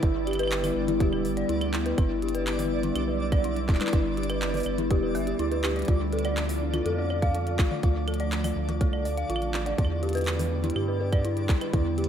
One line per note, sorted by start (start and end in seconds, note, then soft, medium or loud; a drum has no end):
0.00 0.72 G1 loud
0.00 5.84 D3 medium
0.00 5.84 G3 medium
0.00 5.84 B3 medium
0.00 12.09 D4 medium
0.00 5.84 E4 loud
0.00 0.10 E4 medium
0.00 12.09 D5 medium
0.00 kick loud
0.00 closed hi-hat medium
0.27 0.34 G4 medium
0.27 closed hi-hat medium
0.27 claves soft
0.31 closed hi-hat medium
0.31 claves soft
0.35 claves soft
0.39 0.46 B4 loud
0.39 closed hi-hat medium
0.39 claves medium
0.43 claves medium
0.48 claves medium
0.52 clap loud
0.52 closed hi-hat medium
0.64 0.71 B4 medium
0.64 open hi-hat medium
0.64 high tom medium
0.64 claves medium
0.76 1.02 G1 medium
0.88 0.98 E4 medium
0.88 closed hi-hat medium
0.88 high tom medium
1.00 1.26 E1 loud
1.00 1.07 G4 medium
1.00 kick loud
1.00 closed hi-hat medium
1.13 1.23 B4 medium
1.13 claves medium
1.25 1.44 G1 medium
1.25 open hi-hat medium
1.37 1.44 D5 loud
1.37 closed hi-hat medium
1.49 1.94 D2 medium
1.49 1.56 E4 medium
1.49 closed hi-hat medium
1.61 closed hi-hat soft
1.61 claves medium
1.74 1.84 E4 medium
1.74 clap loud
1.74 closed hi-hat soft
1.86 1.93 B4 medium
1.86 closed hi-hat medium
1.98 2.91 G1 loud
1.98 2.05 E4 medium
1.98 kick loud
1.98 closed hi-hat medium
1.98 claves medium
2.22 2.29 G4 medium
2.22 closed hi-hat soft
2.29 closed hi-hat medium
2.35 2.41 B4 loud
2.35 closed hi-hat medium
2.47 clap loud
2.47 closed hi-hat medium
2.47 claves soft
2.59 2.66 B4 medium
2.59 open hi-hat medium
2.59 high tom medium
2.65 high tom medium
2.71 high tom medium
2.77 high tom soft
2.83 2.94 E4 medium
2.83 closed hi-hat medium
2.83 high tom medium
2.96 3.70 B1 medium
2.96 3.02 G4 medium
2.96 closed hi-hat medium
2.96 claves medium
3.08 3.18 B4 medium
3.32 3.39 D5 loud
3.32 kick loud
3.32 closed hi-hat medium
3.32 claves medium
3.44 3.51 E4 medium
3.44 closed hi-hat medium
3.56 closed hi-hat soft
3.69 3.78 D1 loud
3.69 3.79 E4 medium
3.69 kick loud
3.69 clap medium
3.69 closed hi-hat soft
3.75 clap medium
3.81 3.88 B4 medium
3.81 clap medium
3.81 closed hi-hat medium
3.81 high tom medium
3.81 claves medium
3.87 clap loud
3.93 4.62 G1 loud
3.93 4.00 E4 medium
3.93 kick loud
3.93 closed hi-hat medium
4.17 4.24 G4 medium
4.17 closed hi-hat soft
4.23 closed hi-hat medium
4.30 4.36 B4 loud
4.30 closed hi-hat medium
4.30 claves medium
4.42 clap loud
4.42 closed hi-hat medium
4.54 4.61 B4 medium
4.54 open hi-hat soft
4.54 high tom medium
4.57 open hi-hat soft
4.60 open hi-hat medium
4.63 4.92 G1 medium
4.63 open hi-hat medium
4.63 claves medium
4.78 4.89 E4 medium
4.78 closed hi-hat medium
4.78 high tom medium
4.90 5.16 E1 medium
4.90 4.97 G4 medium
4.90 kick loud
4.90 closed hi-hat medium
5.03 5.13 B4 medium
5.15 5.34 G1 medium
5.15 5.19 E5 medium
5.15 open hi-hat medium
5.15 claves medium
5.27 5.34 G4 medium
5.27 closed hi-hat medium
5.39 5.84 D2 medium
5.39 5.43 E4 loud
5.39 closed hi-hat medium
5.52 5.56 B4 medium
5.52 closed hi-hat soft
5.64 5.74 G4 medium
5.64 clap loud
5.64 closed hi-hat soft
5.64 claves medium
5.76 5.83 D5 medium
5.76 closed hi-hat soft
5.79 closed hi-hat soft
5.82 closed hi-hat soft
5.85 12.09 D3 medium
5.85 9.74 F3 medium
5.85 9.74 A3 medium
5.85 7.81 F4 medium
5.85 closed hi-hat soft
5.88 6.82 D2 loud
5.88 5.95 F4 medium
5.88 kick loud
5.88 closed hi-hat medium
6.13 6.19 A4 medium
6.13 closed hi-hat soft
6.19 closed hi-hat medium
6.25 6.32 D5 loud
6.25 closed hi-hat medium
6.25 claves medium
6.37 clap loud
6.37 closed hi-hat medium
6.49 6.56 D5 medium
6.49 open hi-hat medium
6.74 6.84 F4 medium
6.74 closed hi-hat medium
6.74 high tom medium
6.74 claves medium
6.86 7.60 F2 medium
6.86 6.93 A4 medium
6.86 closed hi-hat medium
6.98 7.08 D5 medium
7.10 7.17 D5 medium
7.10 claves soft
7.22 7.29 F5 loud
7.22 kick loud
7.22 closed hi-hat medium
7.35 7.41 F4 medium
7.35 closed hi-hat medium
7.47 closed hi-hat soft
7.59 7.69 A1 loud
7.59 7.69 F4 medium
7.59 kick loud
7.59 clap loud
7.59 closed hi-hat soft
7.59 claves medium
7.71 7.78 D5 medium
7.71 high tom medium
7.83 8.52 D2 loud
7.83 7.90 F4 medium
7.83 kick loud
7.83 closed hi-hat medium
8.08 8.15 A4 medium
8.08 closed hi-hat soft
8.08 claves medium
8.14 closed hi-hat medium
8.20 8.27 D5 loud
8.20 closed hi-hat soft
8.32 clap loud
8.32 closed hi-hat medium
8.44 8.51 D5 medium
8.44 open hi-hat medium
8.44 high tom medium
8.44 claves medium
8.56 8.82 D2 medium
8.69 8.79 F4 medium
8.69 closed hi-hat medium
8.69 high tom loud
8.81 9.07 C2 loud
8.81 8.88 A4 medium
8.81 kick loud
8.81 closed hi-hat medium
8.93 9.03 D5 medium
8.93 claves medium
9.05 9.24 D2 medium
9.05 9.12 D5 medium
9.05 open hi-hat medium
9.17 9.24 F5 loud
9.17 closed hi-hat medium
9.29 9.74 A1 medium
9.29 9.36 F4 medium
9.29 closed hi-hat medium
9.36 claves medium
9.42 closed hi-hat soft
9.54 9.64 F4 medium
9.54 clap loud
9.54 closed hi-hat soft
9.66 9.73 D5 medium
9.66 closed hi-hat medium
9.78 10.72 E2 loud
9.78 12.09 G3 medium
9.78 11.72 B3 medium
9.78 9.85 E4 medium
9.78 kick loud
9.78 closed hi-hat medium
9.85 claves medium
10.03 10.10 G4 medium
10.03 closed hi-hat soft
10.09 closed hi-hat medium
10.13 10.22 B4 loud
10.13 closed hi-hat soft
10.15 closed hi-hat soft
10.17 closed hi-hat soft
10.21 closed hi-hat soft
10.24 clap loud
10.24 closed hi-hat soft
10.27 closed hi-hat medium
10.27 claves medium
10.29 closed hi-hat soft
10.39 10.46 B4 medium
10.39 open hi-hat medium
10.39 high tom medium
10.42 high tom medium
10.44 high tom medium
10.47 high tom soft
10.64 10.74 E4 medium
10.64 closed hi-hat medium
10.64 high tom loud
10.70 closed hi-hat medium
10.76 11.51 G2 medium
10.76 10.83 G4 medium
10.76 claves medium
10.88 10.98 B4 medium
11.00 11.07 B4 medium
11.12 11.19 D5 loud
11.12 kick loud
11.12 closed hi-hat medium
11.12 claves medium
11.25 11.32 E4 medium
11.25 closed hi-hat medium
11.37 closed hi-hat soft
11.49 11.59 B1 loud
11.49 11.59 E4 medium
11.49 kick loud
11.49 clap loud
11.49 closed hi-hat soft
11.61 11.68 B4 medium
11.61 closed hi-hat medium
11.61 claves medium
11.73 12.09 E2 loud
11.73 12.09 A3 medium
11.73 11.80 E4 medium
11.73 kick loud
11.73 closed hi-hat medium
11.73 high tom medium
11.98 12.05 G4 medium
11.98 closed hi-hat soft
12.04 closed hi-hat medium